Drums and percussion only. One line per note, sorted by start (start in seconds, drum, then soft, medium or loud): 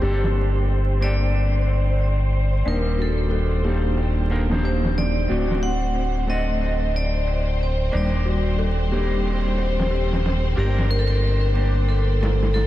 0.02 ride medium
0.24 snare soft
0.35 ride medium
0.68 ride medium
1.01 ride medium
1.21 ride soft
1.34 ride medium
1.53 ride soft
1.66 ride medium
2.00 ride medium
2.19 ride soft
2.32 ride medium
2.66 ride medium
2.99 ride medium
3.32 ride medium
3.51 ride soft
3.64 ride medium
3.97 ride medium
4.30 ride medium
4.51 snare soft
4.63 ride medium
4.85 snare soft
4.96 snare soft
4.96 ride medium
5.29 ride medium
5.51 snare soft
5.63 ride medium
5.95 ride medium
6.28 ride medium
6.48 ride soft
6.61 ride medium
6.81 ride soft
6.94 ride medium
7.27 ride medium
7.47 ride soft
7.60 ride medium
7.93 ride medium
8.26 ride medium
8.59 ride medium
8.79 ride soft
8.92 ride medium
9.26 ride medium
9.58 ride medium
9.80 snare soft
9.91 ride medium
10.13 snare soft
10.24 snare soft
10.24 ride medium
10.57 ride medium
10.78 snare soft
10.89 ride medium
11.22 ride medium
11.55 ride medium
11.75 ride soft
11.88 ride medium
12.08 ride soft
12.21 snare medium
12.21 ride medium
12.43 snare soft
12.54 snare soft
12.54 ride medium